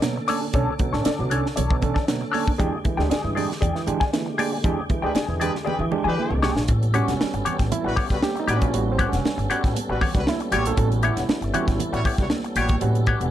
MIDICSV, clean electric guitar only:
0, 0, Header, 1, 3, 480
1, 0, Start_track
1, 0, Tempo, 511945
1, 507, Time_signature, 4, 2, 24, 8
1, 12479, End_track
2, 0, Start_track
2, 0, Title_t, "Clean electric guitar"
2, 0, Program_c, 0, 27
2, 260, Note_on_c, 0, 62, 89
2, 269, Note_on_c, 0, 69, 100
2, 276, Note_on_c, 0, 73, 98
2, 378, Note_off_c, 0, 73, 0
2, 390, Note_off_c, 0, 69, 0
2, 438, Note_off_c, 0, 62, 0
2, 503, Note_on_c, 0, 62, 84
2, 510, Note_on_c, 0, 69, 86
2, 520, Note_on_c, 0, 73, 96
2, 681, Note_off_c, 0, 62, 0
2, 684, Note_off_c, 0, 69, 0
2, 689, Note_off_c, 0, 73, 0
2, 869, Note_on_c, 0, 73, 60
2, 879, Note_on_c, 0, 69, 58
2, 882, Note_on_c, 0, 62, 48
2, 968, Note_off_c, 0, 62, 0
2, 977, Note_off_c, 0, 69, 0
2, 979, Note_on_c, 0, 62, 82
2, 988, Note_on_c, 0, 69, 81
2, 990, Note_off_c, 0, 73, 0
2, 993, Note_on_c, 0, 74, 91
2, 1107, Note_off_c, 0, 74, 0
2, 1113, Note_off_c, 0, 69, 0
2, 1159, Note_off_c, 0, 62, 0
2, 1218, Note_on_c, 0, 62, 66
2, 1229, Note_on_c, 0, 69, 65
2, 1233, Note_on_c, 0, 73, 73
2, 1335, Note_off_c, 0, 73, 0
2, 1346, Note_off_c, 0, 69, 0
2, 1364, Note_off_c, 0, 62, 0
2, 1461, Note_on_c, 0, 62, 76
2, 1469, Note_on_c, 0, 69, 73
2, 1476, Note_on_c, 0, 73, 82
2, 1641, Note_off_c, 0, 62, 0
2, 1645, Note_off_c, 0, 69, 0
2, 1648, Note_off_c, 0, 73, 0
2, 1822, Note_on_c, 0, 74, 65
2, 1831, Note_on_c, 0, 69, 58
2, 1839, Note_on_c, 0, 62, 60
2, 1929, Note_off_c, 0, 62, 0
2, 1937, Note_off_c, 0, 69, 0
2, 1947, Note_off_c, 0, 74, 0
2, 2170, Note_on_c, 0, 62, 88
2, 2182, Note_on_c, 0, 69, 94
2, 2188, Note_on_c, 0, 73, 105
2, 2297, Note_off_c, 0, 73, 0
2, 2308, Note_off_c, 0, 69, 0
2, 2356, Note_off_c, 0, 62, 0
2, 2422, Note_on_c, 0, 68, 87
2, 2430, Note_on_c, 0, 74, 96
2, 2439, Note_on_c, 0, 79, 88
2, 2602, Note_off_c, 0, 68, 0
2, 2606, Note_off_c, 0, 74, 0
2, 2611, Note_off_c, 0, 79, 0
2, 2788, Note_on_c, 0, 79, 69
2, 2796, Note_on_c, 0, 74, 63
2, 2807, Note_on_c, 0, 68, 55
2, 2892, Note_off_c, 0, 68, 0
2, 2903, Note_off_c, 0, 74, 0
2, 2903, Note_on_c, 0, 68, 81
2, 2914, Note_on_c, 0, 74, 81
2, 2919, Note_off_c, 0, 79, 0
2, 2923, Note_on_c, 0, 80, 89
2, 3036, Note_off_c, 0, 80, 0
2, 3039, Note_off_c, 0, 74, 0
2, 3083, Note_off_c, 0, 68, 0
2, 3142, Note_on_c, 0, 68, 70
2, 3154, Note_on_c, 0, 74, 68
2, 3161, Note_on_c, 0, 79, 77
2, 3267, Note_off_c, 0, 79, 0
2, 3276, Note_off_c, 0, 74, 0
2, 3288, Note_off_c, 0, 68, 0
2, 3382, Note_on_c, 0, 68, 77
2, 3391, Note_on_c, 0, 74, 80
2, 3398, Note_on_c, 0, 79, 83
2, 3563, Note_off_c, 0, 68, 0
2, 3568, Note_off_c, 0, 74, 0
2, 3571, Note_off_c, 0, 79, 0
2, 3753, Note_on_c, 0, 80, 70
2, 3764, Note_on_c, 0, 74, 69
2, 3770, Note_on_c, 0, 68, 60
2, 3857, Note_off_c, 0, 68, 0
2, 3862, Note_off_c, 0, 74, 0
2, 3872, Note_off_c, 0, 80, 0
2, 4108, Note_on_c, 0, 68, 86
2, 4118, Note_on_c, 0, 74, 91
2, 4123, Note_on_c, 0, 79, 119
2, 4226, Note_off_c, 0, 79, 0
2, 4239, Note_off_c, 0, 74, 0
2, 4286, Note_off_c, 0, 68, 0
2, 4355, Note_on_c, 0, 68, 88
2, 4362, Note_on_c, 0, 74, 80
2, 4369, Note_on_c, 0, 79, 85
2, 4529, Note_off_c, 0, 68, 0
2, 4533, Note_off_c, 0, 74, 0
2, 4537, Note_off_c, 0, 79, 0
2, 4710, Note_on_c, 0, 79, 68
2, 4722, Note_on_c, 0, 74, 63
2, 4728, Note_on_c, 0, 68, 56
2, 4813, Note_off_c, 0, 68, 0
2, 4824, Note_off_c, 0, 74, 0
2, 4824, Note_on_c, 0, 68, 83
2, 4836, Note_on_c, 0, 74, 81
2, 4840, Note_off_c, 0, 79, 0
2, 4844, Note_on_c, 0, 80, 86
2, 4946, Note_off_c, 0, 80, 0
2, 4951, Note_off_c, 0, 74, 0
2, 5004, Note_off_c, 0, 68, 0
2, 5060, Note_on_c, 0, 68, 59
2, 5069, Note_on_c, 0, 74, 72
2, 5079, Note_on_c, 0, 79, 70
2, 5176, Note_off_c, 0, 79, 0
2, 5185, Note_off_c, 0, 74, 0
2, 5207, Note_off_c, 0, 68, 0
2, 5293, Note_on_c, 0, 68, 91
2, 5301, Note_on_c, 0, 74, 81
2, 5309, Note_on_c, 0, 79, 90
2, 5479, Note_off_c, 0, 68, 0
2, 5483, Note_off_c, 0, 74, 0
2, 5486, Note_off_c, 0, 79, 0
2, 5665, Note_on_c, 0, 80, 73
2, 5673, Note_on_c, 0, 74, 61
2, 5684, Note_on_c, 0, 68, 52
2, 5771, Note_off_c, 0, 68, 0
2, 5777, Note_off_c, 0, 74, 0
2, 5788, Note_off_c, 0, 80, 0
2, 6024, Note_on_c, 0, 68, 102
2, 6033, Note_on_c, 0, 74, 109
2, 6039, Note_on_c, 0, 79, 106
2, 6149, Note_off_c, 0, 79, 0
2, 6161, Note_off_c, 0, 74, 0
2, 6219, Note_off_c, 0, 68, 0
2, 6505, Note_on_c, 0, 67, 78
2, 6514, Note_on_c, 0, 73, 79
2, 6522, Note_on_c, 0, 78, 92
2, 6684, Note_off_c, 0, 67, 0
2, 6688, Note_off_c, 0, 73, 0
2, 6692, Note_off_c, 0, 78, 0
2, 6987, Note_on_c, 0, 67, 77
2, 6997, Note_on_c, 0, 73, 82
2, 7005, Note_on_c, 0, 78, 74
2, 7103, Note_off_c, 0, 78, 0
2, 7116, Note_off_c, 0, 73, 0
2, 7164, Note_off_c, 0, 67, 0
2, 7467, Note_on_c, 0, 67, 92
2, 7476, Note_on_c, 0, 73, 76
2, 7484, Note_on_c, 0, 78, 91
2, 7582, Note_off_c, 0, 78, 0
2, 7592, Note_off_c, 0, 73, 0
2, 7644, Note_off_c, 0, 67, 0
2, 7946, Note_on_c, 0, 67, 91
2, 7957, Note_on_c, 0, 73, 94
2, 7962, Note_on_c, 0, 79, 89
2, 8070, Note_off_c, 0, 79, 0
2, 8077, Note_off_c, 0, 73, 0
2, 8123, Note_off_c, 0, 67, 0
2, 8425, Note_on_c, 0, 67, 85
2, 8436, Note_on_c, 0, 73, 86
2, 8445, Note_on_c, 0, 78, 93
2, 8602, Note_off_c, 0, 67, 0
2, 8608, Note_off_c, 0, 73, 0
2, 8612, Note_off_c, 0, 78, 0
2, 8905, Note_on_c, 0, 67, 81
2, 8914, Note_on_c, 0, 73, 86
2, 8920, Note_on_c, 0, 78, 93
2, 9025, Note_off_c, 0, 78, 0
2, 9034, Note_off_c, 0, 73, 0
2, 9082, Note_off_c, 0, 67, 0
2, 9388, Note_on_c, 0, 67, 74
2, 9396, Note_on_c, 0, 73, 93
2, 9401, Note_on_c, 0, 78, 86
2, 9505, Note_off_c, 0, 78, 0
2, 9516, Note_off_c, 0, 73, 0
2, 9562, Note_off_c, 0, 67, 0
2, 9866, Note_on_c, 0, 67, 76
2, 9875, Note_on_c, 0, 73, 88
2, 9884, Note_on_c, 0, 79, 84
2, 9990, Note_off_c, 0, 79, 0
2, 9996, Note_off_c, 0, 73, 0
2, 10041, Note_off_c, 0, 67, 0
2, 10342, Note_on_c, 0, 67, 73
2, 10353, Note_on_c, 0, 73, 96
2, 10358, Note_on_c, 0, 78, 95
2, 10518, Note_off_c, 0, 67, 0
2, 10523, Note_off_c, 0, 73, 0
2, 10526, Note_off_c, 0, 78, 0
2, 10817, Note_on_c, 0, 67, 70
2, 10825, Note_on_c, 0, 73, 92
2, 10831, Note_on_c, 0, 78, 80
2, 10942, Note_off_c, 0, 78, 0
2, 10951, Note_off_c, 0, 73, 0
2, 10995, Note_off_c, 0, 67, 0
2, 11303, Note_on_c, 0, 67, 82
2, 11314, Note_on_c, 0, 73, 76
2, 11318, Note_on_c, 0, 78, 79
2, 11420, Note_off_c, 0, 78, 0
2, 11431, Note_off_c, 0, 73, 0
2, 11477, Note_off_c, 0, 67, 0
2, 11781, Note_on_c, 0, 67, 92
2, 11790, Note_on_c, 0, 73, 90
2, 11794, Note_on_c, 0, 79, 99
2, 11905, Note_off_c, 0, 79, 0
2, 11907, Note_off_c, 0, 73, 0
2, 11956, Note_off_c, 0, 67, 0
2, 12255, Note_on_c, 0, 67, 89
2, 12262, Note_on_c, 0, 73, 97
2, 12271, Note_on_c, 0, 78, 97
2, 12432, Note_off_c, 0, 67, 0
2, 12435, Note_off_c, 0, 73, 0
2, 12440, Note_off_c, 0, 78, 0
2, 12479, End_track
3, 0, Start_track
3, 0, Title_t, "Muted clean electric guitar strokes"
3, 23, Note_on_c, 9, 29, 46
3, 117, Note_off_c, 9, 29, 0
3, 151, Note_on_c, 9, 29, 35
3, 245, Note_off_c, 9, 29, 0
3, 389, Note_on_c, 9, 29, 46
3, 483, Note_off_c, 9, 29, 0
3, 749, Note_on_c, 9, 29, 50
3, 843, Note_off_c, 9, 29, 0
3, 1111, Note_on_c, 9, 29, 42
3, 1205, Note_off_c, 9, 29, 0
3, 1347, Note_on_c, 9, 29, 49
3, 1440, Note_off_c, 9, 29, 0
3, 1702, Note_on_c, 9, 29, 35
3, 1796, Note_off_c, 9, 29, 0
3, 1940, Note_on_c, 9, 29, 47
3, 2034, Note_off_c, 9, 29, 0
3, 2071, Note_on_c, 9, 29, 45
3, 2165, Note_off_c, 9, 29, 0
3, 2308, Note_on_c, 9, 29, 47
3, 2402, Note_off_c, 9, 29, 0
3, 2666, Note_on_c, 9, 29, 45
3, 2760, Note_off_c, 9, 29, 0
3, 3040, Note_on_c, 9, 29, 47
3, 3134, Note_off_c, 9, 29, 0
3, 3278, Note_on_c, 9, 29, 51
3, 3372, Note_off_c, 9, 29, 0
3, 3629, Note_on_c, 9, 29, 34
3, 3723, Note_off_c, 9, 29, 0
3, 3868, Note_on_c, 9, 29, 37
3, 3962, Note_off_c, 9, 29, 0
3, 3995, Note_on_c, 9, 29, 39
3, 4089, Note_off_c, 9, 29, 0
3, 4238, Note_on_c, 9, 29, 48
3, 4331, Note_off_c, 9, 29, 0
3, 4595, Note_on_c, 9, 29, 45
3, 4689, Note_off_c, 9, 29, 0
3, 4949, Note_on_c, 9, 29, 35
3, 5043, Note_off_c, 9, 29, 0
3, 5187, Note_on_c, 9, 29, 48
3, 5281, Note_off_c, 9, 29, 0
3, 5542, Note_on_c, 9, 29, 40
3, 5636, Note_off_c, 9, 29, 0
3, 5909, Note_on_c, 9, 29, 37
3, 6003, Note_off_c, 9, 29, 0
3, 6160, Note_on_c, 9, 29, 49
3, 6254, Note_off_c, 9, 29, 0
3, 6749, Note_on_c, 9, 29, 41
3, 6843, Note_off_c, 9, 29, 0
3, 6881, Note_on_c, 9, 29, 42
3, 6975, Note_off_c, 9, 29, 0
3, 7115, Note_on_c, 9, 29, 38
3, 7208, Note_off_c, 9, 29, 0
3, 7356, Note_on_c, 9, 29, 45
3, 7450, Note_off_c, 9, 29, 0
3, 7593, Note_on_c, 9, 29, 47
3, 7687, Note_off_c, 9, 29, 0
3, 7834, Note_on_c, 9, 29, 47
3, 7928, Note_off_c, 9, 29, 0
3, 8073, Note_on_c, 9, 29, 53
3, 8167, Note_off_c, 9, 29, 0
3, 8668, Note_on_c, 9, 29, 40
3, 8762, Note_off_c, 9, 29, 0
3, 8794, Note_on_c, 9, 29, 43
3, 8888, Note_off_c, 9, 29, 0
3, 9036, Note_on_c, 9, 29, 46
3, 9130, Note_off_c, 9, 29, 0
3, 9278, Note_on_c, 9, 29, 61
3, 9372, Note_off_c, 9, 29, 0
3, 9516, Note_on_c, 9, 29, 41
3, 9610, Note_off_c, 9, 29, 0
3, 9758, Note_on_c, 9, 29, 42
3, 9852, Note_off_c, 9, 29, 0
3, 9994, Note_on_c, 9, 29, 50
3, 10088, Note_off_c, 9, 29, 0
3, 10584, Note_on_c, 9, 29, 43
3, 10678, Note_off_c, 9, 29, 0
3, 10711, Note_on_c, 9, 29, 40
3, 10805, Note_off_c, 9, 29, 0
3, 10953, Note_on_c, 9, 29, 41
3, 11047, Note_off_c, 9, 29, 0
3, 11189, Note_on_c, 9, 29, 53
3, 11283, Note_off_c, 9, 29, 0
3, 11431, Note_on_c, 9, 29, 37
3, 11525, Note_off_c, 9, 29, 0
3, 11668, Note_on_c, 9, 29, 46
3, 11762, Note_off_c, 9, 29, 0
3, 11909, Note_on_c, 9, 29, 39
3, 12003, Note_off_c, 9, 29, 0
3, 12479, End_track
0, 0, End_of_file